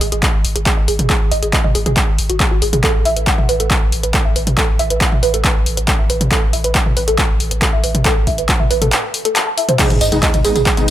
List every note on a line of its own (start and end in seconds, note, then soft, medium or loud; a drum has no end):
0.01 0.11 G#1 loud
0.01 0.06 G#4 loud
0.01 open hi-hat loud
0.12 0.23 G#1 medium
0.12 0.15 G#4 loud
0.12 closed hi-hat medium
0.23 kick loud
0.23 clap loud
0.23 closed hi-hat medium
0.34 0.44 G#1 medium
0.44 0.55 G#1 loud
0.44 open hi-hat loud
0.56 0.66 G#1 medium
0.56 0.58 G#4 medium
0.56 closed hi-hat medium
0.66 0.69 G#4 medium
0.66 kick loud
0.66 clap loud
0.66 closed hi-hat medium
0.77 0.87 G#1 medium
0.77 0.82 D#5 medium
0.88 0.98 G#1 loud
0.88 0.95 G#4 medium
0.88 open hi-hat medium
0.99 1.10 G#1 medium
0.99 closed hi-hat medium
0.99 mid tom loud
1.10 1.17 G#4 loud
1.10 kick loud
1.10 clap loud
1.10 closed hi-hat medium
1.21 1.31 G#1 medium
1.31 1.42 G#1 loud
1.31 1.34 D#5 loud
1.31 open hi-hat loud
1.43 1.53 G#1 medium
1.43 1.45 G#4 medium
1.43 closed hi-hat medium
1.53 1.60 D#5 medium
1.53 kick loud
1.53 clap loud
1.53 closed hi-hat medium
1.64 1.74 G#1 medium
1.64 1.69 D#5 medium
1.64 mid tom medium
1.75 1.85 G#1 loud
1.75 1.80 G#4 loud
1.75 open hi-hat medium
1.86 1.97 G#1 medium
1.86 1.89 G#4 loud
1.86 closed hi-hat medium
1.86 mid tom medium
1.97 kick loud
1.97 clap loud
1.97 closed hi-hat medium
2.08 2.18 G#1 medium
2.18 2.29 G#1 loud
2.18 open hi-hat loud
2.30 2.40 G#1 medium
2.30 2.32 F#4 medium
2.30 closed hi-hat medium
2.40 2.45 G#4 medium
2.40 kick loud
2.40 clap loud
2.40 closed hi-hat medium
2.51 2.61 G#1 medium
2.51 2.58 F#4 medium
2.62 2.72 G#1 loud
2.62 2.67 G#4 medium
2.62 open hi-hat loud
2.73 2.83 G#1 medium
2.73 2.78 G#4 medium
2.73 closed hi-hat medium
2.73 mid tom loud
2.84 2.91 A4 loud
2.84 kick loud
2.84 clap loud
2.84 closed hi-hat medium
2.95 3.05 A1 medium
3.05 3.16 A1 loud
3.05 3.08 E5 loud
3.05 open hi-hat loud
3.16 3.27 A1 medium
3.16 3.19 B4 medium
3.16 closed hi-hat medium
3.27 3.34 F#5 medium
3.27 kick loud
3.27 clap loud
3.27 closed hi-hat medium
3.38 3.48 A1 medium
3.38 3.43 E5 medium
3.38 mid tom medium
3.49 3.59 A1 loud
3.49 3.54 B4 loud
3.49 open hi-hat medium
3.60 3.70 A1 medium
3.60 3.63 A4 loud
3.60 closed hi-hat medium
3.71 kick loud
3.71 clap loud
3.71 closed hi-hat medium
3.82 3.92 A1 medium
3.92 4.03 A1 loud
3.92 open hi-hat loud
4.03 4.14 A1 medium
4.03 4.06 B4 medium
4.03 closed hi-hat medium
4.14 4.17 A4 medium
4.14 kick loud
4.14 clap loud
4.14 closed hi-hat medium
4.25 4.35 A1 medium
4.25 4.30 E5 medium
4.36 4.46 A1 loud
4.36 4.43 B4 medium
4.36 open hi-hat medium
4.47 4.57 A1 medium
4.47 closed hi-hat medium
4.47 mid tom loud
4.58 4.65 A4 loud
4.58 kick loud
4.58 clap loud
4.58 closed hi-hat medium
4.69 4.79 A1 medium
4.79 4.90 A1 loud
4.79 4.82 E5 loud
4.79 open hi-hat loud
4.90 5.01 A1 medium
4.90 4.93 B4 medium
4.90 closed hi-hat medium
5.01 5.08 F#5 medium
5.01 kick loud
5.01 clap loud
5.01 closed hi-hat medium
5.12 5.22 A1 medium
5.12 5.17 E5 medium
5.12 mid tom medium
5.23 5.33 A1 loud
5.23 5.28 B4 loud
5.23 open hi-hat medium
5.34 5.44 A1 medium
5.34 5.37 A4 loud
5.34 closed hi-hat medium
5.45 kick loud
5.45 clap loud
5.45 closed hi-hat medium
5.56 5.66 A1 medium
5.66 5.77 A1 loud
5.66 open hi-hat loud
5.77 5.88 A1 medium
5.77 5.80 B4 medium
5.77 closed hi-hat medium
5.88 5.91 A4 medium
5.88 kick loud
5.88 clap loud
5.88 closed hi-hat medium
5.99 6.09 A1 medium
5.99 6.04 E5 medium
6.10 6.20 A1 loud
6.10 6.17 B4 medium
6.10 open hi-hat medium
6.21 6.31 A1 medium
6.21 closed hi-hat medium
6.21 mid tom medium
6.32 6.39 A4 loud
6.32 kick loud
6.32 clap loud
6.32 closed hi-hat medium
6.43 6.53 A1 medium
6.53 6.64 A1 loud
6.53 6.56 E5 loud
6.53 open hi-hat loud
6.64 6.75 A1 medium
6.64 6.67 B4 medium
6.64 closed hi-hat medium
6.75 6.82 F#5 medium
6.75 kick loud
6.75 clap loud
6.75 closed hi-hat medium
6.86 6.96 A1 medium
6.86 6.91 E5 medium
6.86 mid tom medium
6.97 7.07 A1 loud
6.97 7.01 B4 loud
6.97 open hi-hat medium
7.08 7.18 A1 medium
7.08 7.11 A4 loud
7.08 closed hi-hat medium
7.18 kick loud
7.18 clap loud
7.18 closed hi-hat medium
7.29 7.40 A1 medium
7.40 7.51 A1 loud
7.40 open hi-hat loud
7.51 7.62 A1 medium
7.51 7.54 B4 medium
7.51 closed hi-hat medium
7.62 7.65 A4 medium
7.62 kick loud
7.62 clap loud
7.62 closed hi-hat medium
7.73 7.83 A1 medium
7.73 7.78 E5 medium
7.84 7.94 A1 loud
7.84 7.91 B4 medium
7.84 open hi-hat medium
7.95 8.05 A1 medium
7.95 closed hi-hat medium
7.95 mid tom medium
8.05 8.13 A4 loud
8.05 kick loud
8.05 clap loud
8.05 closed hi-hat medium
8.16 8.27 A1 medium
8.27 8.38 A1 loud
8.27 8.30 E5 loud
8.27 kick medium
8.27 open hi-hat loud
8.38 8.49 A1 medium
8.38 8.41 B4 medium
8.38 closed hi-hat medium
8.49 8.56 F#5 medium
8.49 kick loud
8.49 clap loud
8.49 closed hi-hat medium
8.60 8.70 A1 medium
8.60 8.65 E5 medium
8.60 mid tom medium
8.71 8.81 A1 loud
8.71 8.75 B4 loud
8.71 open hi-hat medium
8.82 8.92 A1 medium
8.82 8.84 A4 loud
8.82 closed hi-hat medium
8.82 mid tom medium
8.92 clap loud
8.92 closed hi-hat medium
9.14 open hi-hat loud
9.25 9.28 A4 loud
9.25 closed hi-hat medium
9.36 9.43 A5 medium
9.36 clap loud
9.36 closed hi-hat medium
9.47 9.54 A5 medium
9.58 9.60 E5 loud
9.58 open hi-hat medium
9.69 9.76 C5 loud
9.69 closed hi-hat medium
9.69 mid tom medium
9.79 9.91 G#3 medium
9.79 9.91 B3 medium
9.79 9.91 D#4 medium
9.79 9.86 G#4 loud
9.79 kick loud
9.79 clap loud
9.79 closed hi-hat medium
9.79 crash loud
9.79 ride medium
9.79 tambourine soft
9.79 sub drop medium
9.90 10.00 G#1 medium
9.90 closed hi-hat medium
9.90 mid tom medium
9.90 ride medium
9.90 tambourine soft
10.01 10.11 G#1 loud
10.01 10.04 D#5 loud
10.01 open hi-hat loud
10.01 ride medium
10.01 tambourine medium
10.12 10.23 G#1 medium
10.12 10.24 G#3 medium
10.12 10.24 B3 medium
10.12 10.24 D#4 medium
10.12 10.15 G#4 medium
10.12 closed hi-hat medium
10.12 mid tom medium
10.12 ride medium
10.12 tambourine soft
10.23 10.30 D#5 medium
10.23 kick loud
10.23 clap loud
10.23 closed hi-hat medium
10.23 ride medium
10.23 tambourine soft
10.34 10.44 G#1 medium
10.34 10.38 D#5 medium
10.34 closed hi-hat medium
10.34 mid tom medium
10.34 ride medium
10.34 tambourine soft
10.45 10.55 G#1 loud
10.45 10.56 G#3 medium
10.45 10.56 B3 medium
10.45 10.56 D#4 medium
10.45 10.49 G#4 loud
10.45 open hi-hat loud
10.45 ride medium
10.45 tambourine medium
10.56 10.66 G#1 medium
10.56 10.58 G#4 loud
10.56 closed hi-hat medium
10.56 mid tom medium
10.56 ride medium
10.56 tambourine soft
10.66 kick loud
10.66 clap loud
10.66 closed hi-hat soft
10.66 ride medium
10.66 tambourine soft
10.77 10.87 G#1 medium
10.77 10.90 G#3 medium
10.77 10.90 B3 medium
10.77 10.90 D#4 loud
10.77 closed hi-hat medium
10.77 mid tom medium
10.77 ride medium
10.77 tambourine soft